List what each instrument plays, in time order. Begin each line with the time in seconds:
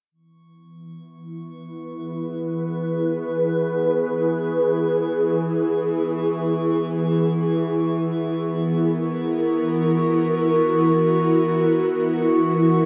0.12 ambient pad E3, synth drone E3 B3, synth texture C#6
0.76 ambient pad E4
1.24 ambient pad B4
1.71 ambient pad G#4
8.08 ambient pad A#4
9.23 ambient pad F#4